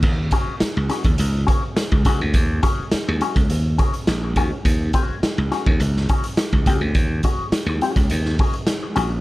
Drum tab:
CC |x---------------|----------------|----------------|----------------|
HH |--x-x-xxx-x-x-x-|x-x-x-xxx-xxx-x-|x-x-x-x-x-xxx-x-|x-x-x-xxx-oxx-x-|
SD |----o-o-----o---|----o-------o---|----o-o--o--o---|----o----o--o---|
BD |o-o----o--o--oo-|o-o----o--o---o-|o-o----o--o--oo-|o-o----o--o-----|